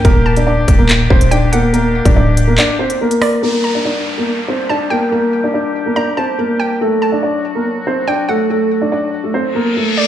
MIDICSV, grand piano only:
0, 0, Header, 1, 2, 480
1, 0, Start_track
1, 0, Key_signature, -2, "minor"
1, 0, Tempo, 422535
1, 53, Time_signature, 4, 2, 24, 8
1, 11443, End_track
2, 0, Start_track
2, 0, Title_t, "Grand piano"
2, 0, Program_c, 0, 0
2, 53, Note_on_c, 0, 70, 107
2, 61, Note_on_c, 0, 58, 77
2, 392, Note_off_c, 0, 70, 0
2, 396, Note_off_c, 0, 58, 0
2, 423, Note_on_c, 0, 74, 72
2, 430, Note_on_c, 0, 62, 59
2, 514, Note_off_c, 0, 74, 0
2, 522, Note_off_c, 0, 62, 0
2, 531, Note_on_c, 0, 74, 93
2, 541, Note_on_c, 0, 62, 67
2, 871, Note_off_c, 0, 74, 0
2, 876, Note_off_c, 0, 62, 0
2, 887, Note_on_c, 0, 70, 77
2, 896, Note_on_c, 0, 58, 65
2, 988, Note_off_c, 0, 70, 0
2, 994, Note_off_c, 0, 58, 0
2, 1255, Note_on_c, 0, 72, 90
2, 1265, Note_on_c, 0, 60, 68
2, 1452, Note_off_c, 0, 72, 0
2, 1458, Note_off_c, 0, 60, 0
2, 1494, Note_on_c, 0, 74, 75
2, 1503, Note_on_c, 0, 62, 66
2, 1692, Note_off_c, 0, 74, 0
2, 1697, Note_off_c, 0, 62, 0
2, 1741, Note_on_c, 0, 70, 81
2, 1750, Note_on_c, 0, 58, 65
2, 1936, Note_off_c, 0, 70, 0
2, 1941, Note_off_c, 0, 58, 0
2, 1969, Note_on_c, 0, 70, 89
2, 1977, Note_on_c, 0, 58, 67
2, 2309, Note_off_c, 0, 70, 0
2, 2314, Note_off_c, 0, 58, 0
2, 2332, Note_on_c, 0, 74, 71
2, 2341, Note_on_c, 0, 62, 58
2, 2431, Note_off_c, 0, 74, 0
2, 2437, Note_off_c, 0, 62, 0
2, 2458, Note_on_c, 0, 74, 87
2, 2467, Note_on_c, 0, 62, 72
2, 2795, Note_off_c, 0, 74, 0
2, 2799, Note_off_c, 0, 62, 0
2, 2811, Note_on_c, 0, 70, 76
2, 2820, Note_on_c, 0, 58, 58
2, 2911, Note_off_c, 0, 70, 0
2, 2916, Note_off_c, 0, 58, 0
2, 2937, Note_on_c, 0, 74, 98
2, 2945, Note_on_c, 0, 62, 79
2, 3133, Note_off_c, 0, 74, 0
2, 3138, Note_off_c, 0, 62, 0
2, 3173, Note_on_c, 0, 72, 79
2, 3182, Note_on_c, 0, 60, 64
2, 3371, Note_off_c, 0, 72, 0
2, 3376, Note_off_c, 0, 60, 0
2, 3423, Note_on_c, 0, 70, 79
2, 3431, Note_on_c, 0, 58, 65
2, 3870, Note_off_c, 0, 70, 0
2, 3874, Note_off_c, 0, 58, 0
2, 3896, Note_on_c, 0, 70, 111
2, 3906, Note_on_c, 0, 58, 83
2, 4233, Note_off_c, 0, 70, 0
2, 4239, Note_off_c, 0, 58, 0
2, 4260, Note_on_c, 0, 74, 73
2, 4268, Note_on_c, 0, 62, 48
2, 4356, Note_off_c, 0, 74, 0
2, 4361, Note_off_c, 0, 62, 0
2, 4377, Note_on_c, 0, 74, 81
2, 4386, Note_on_c, 0, 62, 65
2, 4714, Note_off_c, 0, 74, 0
2, 4719, Note_off_c, 0, 62, 0
2, 4746, Note_on_c, 0, 70, 77
2, 4755, Note_on_c, 0, 58, 59
2, 4839, Note_off_c, 0, 70, 0
2, 4845, Note_off_c, 0, 58, 0
2, 5094, Note_on_c, 0, 72, 80
2, 5103, Note_on_c, 0, 60, 61
2, 5291, Note_off_c, 0, 72, 0
2, 5297, Note_off_c, 0, 60, 0
2, 5341, Note_on_c, 0, 74, 74
2, 5350, Note_on_c, 0, 62, 59
2, 5536, Note_off_c, 0, 74, 0
2, 5541, Note_off_c, 0, 62, 0
2, 5576, Note_on_c, 0, 70, 80
2, 5585, Note_on_c, 0, 58, 64
2, 5773, Note_off_c, 0, 70, 0
2, 5778, Note_off_c, 0, 58, 0
2, 5811, Note_on_c, 0, 70, 88
2, 5820, Note_on_c, 0, 58, 66
2, 6151, Note_off_c, 0, 70, 0
2, 6155, Note_off_c, 0, 58, 0
2, 6178, Note_on_c, 0, 74, 70
2, 6188, Note_on_c, 0, 62, 56
2, 6275, Note_off_c, 0, 74, 0
2, 6281, Note_off_c, 0, 62, 0
2, 6295, Note_on_c, 0, 74, 74
2, 6305, Note_on_c, 0, 62, 61
2, 6633, Note_off_c, 0, 74, 0
2, 6638, Note_off_c, 0, 62, 0
2, 6658, Note_on_c, 0, 70, 72
2, 6666, Note_on_c, 0, 58, 56
2, 6755, Note_off_c, 0, 70, 0
2, 6760, Note_off_c, 0, 58, 0
2, 6771, Note_on_c, 0, 74, 88
2, 6781, Note_on_c, 0, 62, 67
2, 6970, Note_off_c, 0, 74, 0
2, 6975, Note_off_c, 0, 62, 0
2, 7014, Note_on_c, 0, 72, 75
2, 7024, Note_on_c, 0, 60, 59
2, 7211, Note_off_c, 0, 72, 0
2, 7217, Note_off_c, 0, 60, 0
2, 7255, Note_on_c, 0, 70, 77
2, 7265, Note_on_c, 0, 58, 60
2, 7705, Note_off_c, 0, 70, 0
2, 7711, Note_off_c, 0, 58, 0
2, 7738, Note_on_c, 0, 69, 94
2, 7746, Note_on_c, 0, 57, 79
2, 8075, Note_off_c, 0, 69, 0
2, 8079, Note_off_c, 0, 57, 0
2, 8091, Note_on_c, 0, 74, 70
2, 8100, Note_on_c, 0, 62, 57
2, 8191, Note_off_c, 0, 74, 0
2, 8196, Note_off_c, 0, 62, 0
2, 8212, Note_on_c, 0, 74, 86
2, 8223, Note_on_c, 0, 62, 63
2, 8551, Note_off_c, 0, 74, 0
2, 8557, Note_off_c, 0, 62, 0
2, 8581, Note_on_c, 0, 70, 80
2, 8591, Note_on_c, 0, 58, 58
2, 8677, Note_off_c, 0, 70, 0
2, 8683, Note_off_c, 0, 58, 0
2, 8939, Note_on_c, 0, 72, 87
2, 8949, Note_on_c, 0, 60, 66
2, 9135, Note_off_c, 0, 72, 0
2, 9140, Note_off_c, 0, 60, 0
2, 9174, Note_on_c, 0, 74, 77
2, 9182, Note_on_c, 0, 62, 62
2, 9371, Note_off_c, 0, 74, 0
2, 9376, Note_off_c, 0, 62, 0
2, 9418, Note_on_c, 0, 69, 85
2, 9426, Note_on_c, 0, 57, 63
2, 9614, Note_off_c, 0, 69, 0
2, 9618, Note_off_c, 0, 57, 0
2, 9659, Note_on_c, 0, 69, 83
2, 9667, Note_on_c, 0, 57, 59
2, 9995, Note_off_c, 0, 69, 0
2, 9999, Note_off_c, 0, 57, 0
2, 10015, Note_on_c, 0, 74, 72
2, 10025, Note_on_c, 0, 62, 57
2, 10113, Note_off_c, 0, 74, 0
2, 10119, Note_off_c, 0, 62, 0
2, 10134, Note_on_c, 0, 74, 83
2, 10143, Note_on_c, 0, 62, 62
2, 10472, Note_off_c, 0, 74, 0
2, 10477, Note_off_c, 0, 62, 0
2, 10492, Note_on_c, 0, 69, 71
2, 10502, Note_on_c, 0, 57, 57
2, 10592, Note_off_c, 0, 69, 0
2, 10597, Note_off_c, 0, 57, 0
2, 10611, Note_on_c, 0, 72, 87
2, 10621, Note_on_c, 0, 60, 71
2, 10809, Note_off_c, 0, 72, 0
2, 10815, Note_off_c, 0, 60, 0
2, 10849, Note_on_c, 0, 70, 83
2, 10857, Note_on_c, 0, 58, 67
2, 11049, Note_off_c, 0, 70, 0
2, 11053, Note_off_c, 0, 58, 0
2, 11091, Note_on_c, 0, 69, 73
2, 11101, Note_on_c, 0, 57, 61
2, 11443, Note_off_c, 0, 57, 0
2, 11443, Note_off_c, 0, 69, 0
2, 11443, End_track
0, 0, End_of_file